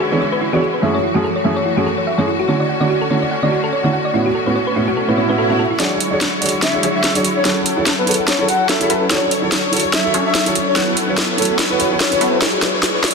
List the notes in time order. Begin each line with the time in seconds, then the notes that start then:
Already playing: D3 G#3 C#4 E4 F#4
0.00 G#4
0.11 E3 B3 D4 F#4 G#4 B4 C#5
0.21 C#5
0.32 B4
0.42 E4
0.52 E3 B3 D4 F#4 G#4 C#5
0.62 G#4
0.74 B4
0.82 F#2 E3 A3 C#4 E4 F#4 G#4 E5
0.95 C#5
1.04 E4
1.14 F#2 A3 C#4 E4 F#4 G#4
1.24 A4
1.36 C#5
1.44 F#2 A3 C#4 E4 G#4 E5
1.57 C#5
1.66 E4
1.77 F#2 A3 C#4 E4 F#4 G#4
1.86 A4
1.98 C#5
2.07 E5
2.18 F#2 A3 C#4 E4 G#4 C#5
2.28 E4
2.39 F#4
2.48 D3 A3 C#4 E4 F#4 C#5
2.60 D5
2.69 F#5
2.80 D3 A3 C#4 E4 F#4 D5
2.90 F#4
3.01 A4
3.10 D3 A3 C#4 E4 F#4 C#5
3.22 D5
3.31 F#5
3.42 D3 A3 C#4 E4 F#4 D5
3.52 F#4
3.64 A4
3.73 C#5
3.83 D3 A3 C#4 E4 F#4 D5
3.93 F#5
4.05 D5
4.13 A2 B2 A3 B3 C#4 E4 F#4
4.26 F#4
4.35 A4
4.46 A2 B3 C#4 E4 F#4 B4
4.56 C#5
4.67 B4
4.75 A2 B3 C#4 E4 F#4
4.88 F#4
4.97 A4, swell
5.07 A2 B3 C#4 E4 F#4 B4
5.17 A2 B3 C#4 E4 F#4 C#5
5.28 A2 B3 C#4 E4 F#4 B4
5.38 A4
5.49 A2 B3 C#4 E4 F#4 A4
5.59 A4
5.71 E4
5.79 D3 F#3 G#3 D4 E4 F#4 G#4 C#5, snare, closed hi-hat
6.00 closed hi-hat
6.11 D4 F#4 G#4 C#5
6.21 snare, closed hi-hat
6.41 D4 F#4 G#4 C#5, closed hi-hat
6.46 closed hi-hat
6.49 closed hi-hat
6.62 E5, snare, closed hi-hat
6.73 D4 F#4 G#4 C#5
6.83 F#3 D4 E4 G#4 C#5, closed hi-hat
6.95 E5
7.04 snare, closed hi-hat
7.14 D4 F#4 G#4 C#5, closed hi-hat
7.25 closed hi-hat
7.36 C#5
7.44 F#3 C#4 E4 G#4 A4 C#5 F#5, snare, closed hi-hat
7.66 closed hi-hat
7.76 E4 G#4 A4 C#5
7.86 snare, closed hi-hat
7.98 B4
8.06 E4 G#4 A4 B4 C#5, closed hi-hat
8.11 closed hi-hat
8.14 closed hi-hat
8.28 C#5, snare, closed hi-hat
8.38 E4 G#4 A4 C#5
8.48 F#5, closed hi-hat
8.69 F#3 C#4 E4 A4 C#5 E5, snare, closed hi-hat
8.80 E4 G#4 A4 C#5 E5, closed hi-hat
8.90 F#3 C#4 E4 A4 B4, closed hi-hat
9.10 D3 F#3 C#4 D4 E4 F#4 A4 C#5, snare, closed hi-hat
9.31 closed hi-hat
9.42 E4 F#4 A4 C#5
9.52 snare, closed hi-hat
9.72 E4 F#4 A4 C#5, closed hi-hat
9.77 closed hi-hat
9.80 closed hi-hat
9.93 E5, snare, closed hi-hat
10.04 E4 F#4 A4 C#5
10.14 F#3 C#4 D4 A4 C#5, closed hi-hat
10.26 E5
10.35 snare, closed hi-hat
10.45 E4 F#4 A4 C#5, closed hi-hat
10.55 closed hi-hat
10.67 C#5
10.75 F#3 B3 C#4 E4 F#4 A4 B4 C#5 F#5, snare, closed hi-hat
10.97 closed hi-hat
11.08 E4 F#4 B4 C#5
11.18 snare, closed hi-hat
11.37 E4 F#4 A4 B4 C#5, closed hi-hat
11.42 closed hi-hat
11.45 closed hi-hat
11.50 A4
11.59 snare, closed hi-hat
11.70 E4 F#4 B4 C#5
11.79 E4 F#4 B4 C#5, closed hi-hat
11.90 E4 F#4 B4 C#5
12.00 C#5, snare, closed hi-hat
12.11 E4 F#4 B4 C#5, closed hi-hat
12.21 F#3 B3 E4 A4 B4, closed hi-hat
12.42 F#3 D4 E4 G#4 C#5, snare, closed hi-hat, riser
12.53 F#4
12.62 B4, snare, closed hi-hat
12.74 B4
12.83 C#5, snare, closed hi-hat
12.95 B4
13.04 E4, snare, closed hi-hat
13.08 closed hi-hat
13.11 closed hi-hat